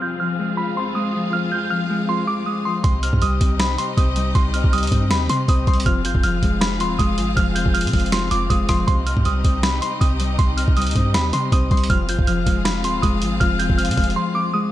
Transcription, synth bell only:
0.02 0.18 G6 medium
0.20 0.55 F6 medium
0.57 0.74 B5 medium
0.77 0.94 C6 medium
0.95 1.12 D#6 medium
1.33 1.50 F6 medium
1.52 1.69 G6 medium
1.70 2.06 F6 medium
2.09 2.26 C6 medium
2.27 2.44 D6 medium
2.46 2.63 D#6 medium
2.65 2.82 C6 medium
2.84 3.01 C6 medium
3.03 3.20 F6 medium
3.22 3.57 D#6 medium
3.60 3.77 B5 medium
3.78 3.95 C6 medium
3.97 4.14 D#6 medium
4.35 4.52 C6 medium
4.54 4.71 F6 medium
4.73 5.08 D#6 medium
5.11 5.28 B5 medium
5.30 5.46 C6 medium
5.49 5.66 D#6 medium
5.68 5.84 C6 medium
5.86 6.03 F6 medium
6.05 6.22 G6 medium
6.24 6.59 F6 medium
6.61 6.78 B5 medium
6.81 6.97 C6 medium
6.99 7.16 D#6 medium
7.37 7.54 F6 medium
7.55 7.72 G6 medium
7.74 8.10 F6 medium
8.12 8.29 C6 medium
8.31 8.48 D6 medium
8.50 8.67 D#6 medium
8.69 8.86 C6 medium
8.87 9.05 C6 medium
9.06 9.24 F6 medium
9.26 9.61 D#6 medium
9.63 9.80 B5 medium
9.82 9.99 C6 medium
10.01 10.18 D#6 medium
10.39 10.56 C6 medium
10.57 10.74 F6 medium
10.77 11.12 D#6 medium
11.15 11.31 B5 medium
11.33 11.50 C6 medium
11.53 11.69 D#6 medium
11.71 11.88 C6 medium
11.90 12.07 F6 medium
12.09 12.26 G6 medium
12.27 12.63 F6 medium
12.65 12.82 B5 medium
12.85 13.01 C6 medium
13.02 13.20 D#6 medium
13.40 13.57 F6 medium
13.59 13.76 G6 medium
13.78 14.14 F6 medium
14.16 14.33 C6 medium
14.35 14.52 D6 medium
14.54 14.71 D#6 medium

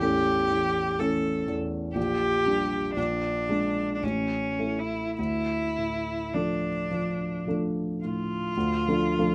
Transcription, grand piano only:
0.00 1.92 A1 soft
0.00 0.31 E2 soft
0.00 0.47 E3 soft
0.00 0.47 A3 soft
0.00 0.47 C#4 soft
0.51 0.98 E3 soft
1.00 1.44 E3 soft
1.00 1.44 A3 soft
1.00 1.44 C#4 soft
1.48 1.96 E2 soft
1.95 2.94 A#1 soft
2.46 2.93 G3 soft
2.46 2.93 D4 soft
2.96 3.99 A#1 soft
3.49 3.99 G#3 soft
3.49 3.99 D4 soft
4.03 5.14 A1 soft
4.59 5.14 A3 soft
4.59 5.14 E4 soft
5.19 8.52 D2 soft
5.78 6.68 A2 soft
6.34 6.87 F3 soft
6.34 6.87 A3 soft
6.34 6.87 D4 soft
6.91 7.45 F3 soft
7.47 7.99 F3 soft
7.47 8.00 A3 soft
7.47 8.00 D4 soft
8.04 8.56 A2 soft
8.57 8.87 D2 soft
8.88 9.16 F3 soft
8.88 9.16 A3 soft
8.88 9.16 D4 soft
9.19 9.35 F3 soft
9.19 9.35 A3 soft
9.19 9.35 D4 soft

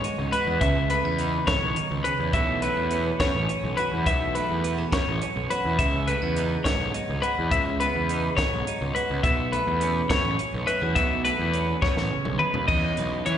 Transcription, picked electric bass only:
0.18 0.29 C#2 medium
0.47 0.58 E2 medium
0.61 0.94 C#2 loud
1.04 1.37 E2 medium
1.48 1.59 G#1 medium
1.63 1.73 B1 medium
1.91 2.02 C#2 medium
2.20 2.31 E2 medium
2.33 2.67 B1 loud
2.77 3.10 E2 medium
3.20 3.31 F#2 medium
3.35 3.46 A1 medium
3.64 3.74 B1 medium
3.93 4.03 E2 medium
4.07 4.40 B1 loud
4.50 4.82 E2 medium
4.92 5.03 F#2 medium
5.08 5.18 A1 medium
5.36 5.47 B1 medium
5.65 5.76 E2 medium
5.79 6.12 C#2 loud
6.23 6.55 E2 medium
6.66 6.76 G#1 medium
6.80 6.91 B1 medium
7.10 7.20 C#2 medium
7.39 7.49 E2 medium
7.52 7.85 C#2 loud
7.95 8.28 E2 medium
8.38 8.49 G#1 medium
8.53 8.63 B1 medium
8.81 8.92 C#2 loud
9.10 9.21 C#2 medium
9.23 9.57 B1 loud
9.67 10.00 E2 medium
10.10 10.21 F#2 medium
10.25 10.36 A1 medium
10.54 10.65 B1 medium
10.82 10.93 E2 medium
10.96 11.29 B1 loud
11.39 11.73 E2 medium
11.82 11.94 F#2 medium
11.97 12.08 A1 medium
12.26 12.37 B1 medium
12.54 12.66 D#2 medium
12.68 12.91 E2 medium
12.98 13.20 B1 medium
13.27 13.38 E3 medium

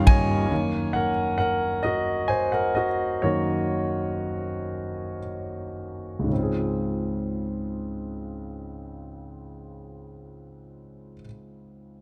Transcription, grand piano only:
0.00 0.48 G1 medium
0.00 0.47 D#2 medium
0.00 0.48 G2 medium
0.00 0.51 D#3 medium
0.00 0.53 G3 medium
0.00 0.08 A#3 medium
0.00 0.29 C#4 medium
0.00 0.53 F5 medium
0.00 0.53 G5 medium
0.07 0.50 A#3 medium
0.07 0.91 C#5 medium
0.07 0.48 D#5 medium
0.07 0.97 G#5 loud
0.30 0.51 C#4 medium
0.51 1.09 F#2 soft
0.51 1.09 D#3 soft
0.51 1.10 A#3 soft
0.93 1.36 A#4 medium
0.93 1.36 F#5 medium
1.38 1.80 A#4 medium
1.38 1.79 F#5 medium
1.83 2.26 F#4 soft
1.83 2.29 D#5 medium
2.28 2.50 C5 medium
2.28 2.49 G#5 medium
2.52 2.74 A#4 medium
2.52 2.73 F#5 medium
2.75 2.87 F#4 medium
2.75 2.85 D#5 medium
3.22 6.28 F#2 soft
3.22 6.28 D#3 soft
3.22 6.28 A#3 soft
3.22 5.18 F#4 soft
3.22 5.17 C#5 medium
6.19 11.11 C#2 soft
6.24 11.16 G#2 soft
6.29 11.19 C#3 soft
6.33 11.22 C4 soft
6.38 11.24 F4 soft
6.43 11.27 G#4 soft

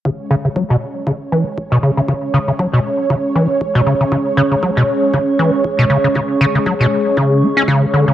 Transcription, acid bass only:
0.05 0.10 C#3 medium
0.31 0.35 C#3 loud
0.45 0.49 C#3 medium
0.56 0.64 F#3 medium
0.70 0.76 B2 loud
1.07 1.12 C#3 medium
1.32 1.44 E3 medium
1.72 1.78 B2 loud
1.83 1.91 C#3 medium
1.97 2.01 C#3 medium
2.08 2.13 C#3 medium
2.34 2.39 C#3 loud
2.48 2.52 C#3 medium
2.59 2.67 F#3 medium
2.73 2.80 B2 loud
3.10 3.15 C#3 medium
3.36 3.47 E3 medium
3.75 3.81 B2 loud
3.87 3.94 C#3 medium
4.01 4.04 C#3 medium
4.12 4.17 C#3 medium
4.37 4.42 C#3 loud
4.52 4.55 C#3 medium
4.63 4.71 F#3 medium
4.77 4.83 B2 loud
5.14 5.18 C#3 medium
5.39 5.51 E3 medium
5.79 5.85 B2 loud
5.90 5.98 C#3 medium
6.04 6.08 C#3 medium
6.15 6.20 C#3 medium
6.41 6.46 C#3 loud
6.55 6.59 C#3 medium
6.66 6.74 F#3 medium
6.81 6.87 B2 loud
7.17 7.44 C#3 medium
7.43 7.47 C#4 medium
7.57 7.63 C#4 loud
7.68 7.84 C#3 loud
7.82 7.86 D3 loud
7.93 8.05 D3 medium
8.08 8.14 C#3 medium

